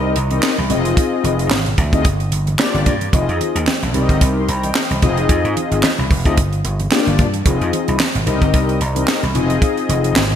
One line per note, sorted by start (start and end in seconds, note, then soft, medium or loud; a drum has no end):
0.00 0.11 C2 loud
0.00 0.16 C4 loud
0.00 0.16 D#4 medium
0.00 0.16 G4 medium
0.00 0.16 A#4 medium
0.00 0.19 D#5 loud
0.16 0.38 C2 loud
0.16 closed hi-hat medium
0.16 muted conga soft
0.30 0.56 C4 medium
0.30 0.56 D#4 medium
0.30 0.56 G4 medium
0.30 0.57 A#4 medium
0.30 0.57 D#5 loud
0.30 closed hi-hat soft
0.30 high conga medium
0.43 snare loud
0.43 clap loud
0.43 muted conga soft
0.58 0.71 C2 loud
0.58 high conga medium
0.69 0.92 F1 medium
0.69 1.57 C4 loud
0.69 1.57 D#4 medium
0.69 1.57 F4 medium
0.69 1.57 G#4 medium
0.69 1.57 D#5 loud
0.69 closed hi-hat medium
0.69 muted conga soft
0.69 low conga medium
0.85 closed hi-hat medium
0.85 high conga medium
0.97 kick loud
0.97 closed hi-hat loud
0.97 muted conga soft
1.24 1.46 F1 loud
1.24 closed hi-hat medium
1.24 high conga medium
1.39 closed hi-hat medium
1.50 1.73 G#1 medium
1.50 snare loud
1.50 clap medium
1.50 muted conga soft
1.50 high conga loud
1.66 closed hi-hat soft
1.66 low conga medium
1.78 2.06 D2 loud
1.78 kick medium
1.78 closed hi-hat medium
1.78 muted conga soft
1.78 high conga medium
1.78 low conga medium
1.93 2.05 C4 loud
1.93 2.05 D#4 medium
1.93 2.05 F4 medium
1.93 2.05 G#4 medium
1.93 2.05 D#5 loud
1.93 kick medium
1.93 closed hi-hat soft
2.05 2.27 G1 loud
2.05 kick loud
2.05 closed hi-hat loud
2.20 closed hi-hat soft
2.32 2.54 G1 loud
2.32 closed hi-hat medium
2.32 muted conga soft
2.47 closed hi-hat soft
2.47 high conga medium
2.59 2.94 A#3 medium
2.59 2.94 D4 medium
2.59 2.94 F4 medium
2.59 2.94 G4 medium
2.59 2.94 D5 loud
2.59 snare loud
2.59 clap loud
2.59 muted conga soft
2.74 2.84 G1 loud
2.74 closed hi-hat soft
2.74 high conga medium
2.86 3.08 G2 loud
2.86 kick medium
2.86 closed hi-hat medium
2.86 muted conga soft
2.86 low conga medium
3.01 closed hi-hat medium
3.01 high conga medium
3.13 3.25 F1 loud
3.13 3.64 C4 medium
3.13 3.65 D#4 medium
3.13 3.65 F4 medium
3.13 3.65 G#4 medium
3.13 3.65 D#5 medium
3.13 kick loud
3.13 closed hi-hat medium
3.29 3.38 F2 medium
3.29 closed hi-hat soft
3.41 closed hi-hat medium
3.41 muted conga soft
3.41 high conga medium
3.55 3.65 D#2 loud
3.55 closed hi-hat medium
3.67 snare loud
3.67 clap medium
3.67 muted conga soft
3.67 high conga loud
3.83 3.92 A#1 medium
3.83 closed hi-hat soft
3.83 low conga medium
3.94 4.07 C2 loud
3.94 4.48 C4 medium
3.94 4.48 D#4 medium
3.94 4.48 G4 medium
3.94 4.48 A#4 medium
3.94 4.02 D5 medium
3.94 closed hi-hat medium
3.94 high conga medium
3.94 low conga medium
4.01 4.25 D#5 loud
4.09 4.19 G1 medium
4.09 kick loud
4.09 closed hi-hat soft
4.21 4.43 C2 loud
4.21 kick loud
4.21 closed hi-hat loud
4.21 muted conga soft
4.36 4.48 C6 medium
4.48 4.70 C2 loud
4.48 4.62 G5 medium
4.48 4.63 A#5 medium
4.48 closed hi-hat medium
4.63 4.89 D#5 medium
4.63 4.89 G5 medium
4.63 closed hi-hat soft
4.63 high conga medium
4.75 snare loud
4.75 clap loud
4.90 5.00 C2 medium
4.90 5.16 C5 medium
4.90 5.01 D#5 medium
4.90 closed hi-hat soft
4.90 high conga medium
5.02 5.24 F1 loud
5.02 5.89 C4 loud
5.02 5.89 D#4 medium
5.02 5.90 F4 medium
5.02 5.90 G#4 medium
5.02 5.90 D#5 loud
5.02 kick loud
5.02 closed hi-hat medium
5.02 low conga medium
5.17 closed hi-hat soft
5.17 high conga medium
5.29 5.42 F2 loud
5.29 kick loud
5.29 closed hi-hat loud
5.44 5.54 G#2 medium
5.44 closed hi-hat soft
5.57 closed hi-hat medium
5.57 muted conga soft
5.57 high conga medium
5.71 5.81 G#1 medium
5.71 closed hi-hat medium
5.83 snare loud
5.83 clap loud
5.83 muted conga soft
5.83 high conga medium
5.99 6.08 C2 medium
5.99 low conga medium
6.10 6.23 F1 loud
6.10 kick loud
6.10 open hi-hat medium
6.10 high conga medium
6.10 low conga medium
6.25 6.39 D2 medium
6.25 6.37 C4 loud
6.25 6.37 D#4 medium
6.25 6.38 F4 medium
6.25 6.38 G#4 medium
6.25 6.38 D#5 loud
6.25 kick medium
6.25 closed hi-hat soft
6.37 6.59 G1 loud
6.37 kick loud
6.37 closed hi-hat loud
6.53 closed hi-hat soft
6.64 6.86 G1 loud
6.64 closed hi-hat medium
6.64 muted conga soft
6.80 closed hi-hat soft
6.80 high conga medium
6.91 7.26 A#3 loud
6.91 7.26 D4 medium
6.91 7.26 F4 medium
6.91 7.27 G4 medium
6.91 7.27 D5 loud
6.91 snare loud
6.91 clap medium
7.07 7.20 G1 loud
7.07 closed hi-hat soft
7.07 high conga medium
7.19 7.41 G2 loud
7.19 kick medium
7.19 closed hi-hat medium
7.19 low conga medium
7.34 closed hi-hat medium
7.34 high conga medium
7.45 7.58 F1 loud
7.45 7.97 C4 medium
7.45 7.97 D#4 medium
7.45 7.97 F4 medium
7.45 7.97 G#4 medium
7.45 7.97 D#5 medium
7.45 kick loud
7.45 closed hi-hat loud
7.61 7.71 F2 loud
7.61 closed hi-hat soft
7.73 closed hi-hat medium
7.73 muted conga soft
7.73 high conga medium
7.88 7.98 C2 medium
7.88 closed hi-hat medium
7.99 snare loud
7.99 clap loud
7.99 muted conga soft
7.99 high conga loud
8.15 8.25 G#1 medium
8.15 closed hi-hat soft
8.15 low conga medium
8.26 8.39 C2 loud
8.26 8.80 C4 medium
8.26 8.81 D#4 medium
8.26 8.81 G4 medium
8.26 8.81 A#4 medium
8.26 8.81 D#5 loud
8.26 closed hi-hat medium
8.26 muted conga soft
8.26 high conga medium
8.26 low conga medium
8.42 8.51 G1 medium
8.42 kick loud
8.42 closed hi-hat soft
8.54 8.76 C2 loud
8.54 kick loud
8.54 closed hi-hat medium
8.69 closed hi-hat soft
8.81 9.03 C2 loud
8.81 closed hi-hat medium
8.95 9.21 C4 medium
8.95 9.21 D#4 medium
8.95 9.21 G4 medium
8.95 9.21 A#4 medium
8.95 9.21 D#5 medium
8.95 closed hi-hat medium
8.95 high conga medium
9.08 snare loud
9.08 clap loud
9.08 muted conga soft
9.23 9.36 C2 medium
9.23 closed hi-hat soft
9.23 high conga medium
9.34 9.57 F1 loud
9.34 10.22 C4 medium
9.34 10.22 D#4 medium
9.34 10.22 F4 medium
9.34 10.22 G#4 medium
9.34 10.22 D#5 loud
9.34 closed hi-hat medium
9.34 muted conga soft
9.34 low conga medium
9.50 closed hi-hat medium
9.50 high conga medium
9.62 kick loud
9.62 closed hi-hat medium
9.62 muted conga soft
9.77 closed hi-hat soft
9.89 10.11 F1 loud
9.89 closed hi-hat medium
9.89 high conga medium
10.04 closed hi-hat medium
10.15 10.36 G#1 medium
10.15 snare loud
10.15 clap medium
10.15 high conga medium
10.31 low conga medium